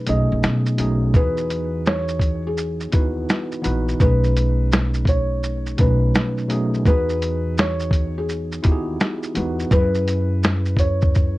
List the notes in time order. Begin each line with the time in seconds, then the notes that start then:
Already playing: B2 F#3 A3 C#4 D#4 G#4
0.06 B1 B2 F#3 A3 C#4 D#4 G#4 D#5, closed hi-hat, shaker
0.32 B1
0.43 B2, snare, shaker
0.66 shaker
0.77 B1 B2 F#3 A3 C#4 D#4 G#4, closed hi-hat, shaker
1.13 E2 E3 B3 D#4 F#4 G#4 B4, kick, shaker
1.37 shaker
1.50 closed hi-hat, shaker
1.86 C#5, snare, shaker
2.08 shaker
2.20 kick, closed hi-hat, shaker
2.47 G#4
2.58 shaker
2.81 shaker
2.92 D#2 B3 D#4 E4 F#4 B4, kick, closed hi-hat, shaker
3.29 snare, shaker
3.52 shaker
3.62 A#1 E3 B3 D#4 F#4 B4, closed hi-hat, shaker
3.88 shaker
4.00 B1 B2 F#3 A3 C#4 D#4 G#4 B4, kick, shaker
4.24 shaker
4.36 closed hi-hat, shaker
4.72 snare, shaker
4.94 shaker
5.05 C#5, kick, closed hi-hat, shaker
5.43 shaker
5.66 shaker
5.77 B1 B2 F#3 A3 C#4 D#4 B4, kick, closed hi-hat, shaker
6.15 snare, shaker
6.38 shaker
6.48 B2 F#3 A3 C#4 D#4 G#4, closed hi-hat, shaker
6.74 shaker
6.85 E2 E3 B3 D#4 F#4 G#4 B4, kick, shaker
7.09 shaker
7.22 closed hi-hat, shaker
7.58 C#5, snare, shaker
7.80 shaker
7.91 kick, closed hi-hat, shaker
8.18 G#4
8.29 shaker
8.52 shaker
8.63 D#2 B3 D#4 E4 F#4 G4, kick, closed hi-hat, shaker
8.72 G#4
9.00 snare, shaker
9.23 shaker
9.34 E2 E3 B3 D#4 F#4 B4, closed hi-hat, shaker
9.59 shaker
9.70 F#2 F#3 C#4 E4 G#4 B4, kick, shaker
9.95 shaker
10.08 closed hi-hat, shaker
10.43 snare, shaker
10.65 shaker
10.77 C#5, kick, closed hi-hat, shaker
11.01 kick, shaker
11.15 kick, shaker